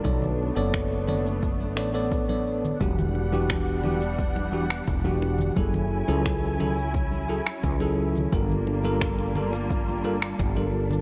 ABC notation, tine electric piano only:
X:1
M:4/4
L:1/16
Q:1/4=87
K:Edor
V:1 name="Tine electric piano"
[B,Acd]3 [B,Acd]3 [B,Acd] z3 [B,Acd] [B,Acd]2 [B,Acd]3 | [E,DFG]3 [E,DFG]3 [E,DFG] z3 [E,DFG] z2 [E,DFG]3 | [F,E^GA]3 [F,EGA]3 [F,EGA] z3 [F,EGA] z2 [F,EGA]3 | [G,=FA_B]3 [G,FAB]3 [G,FAB] z3 [G,FAB] z2 [G,FAB]3 |]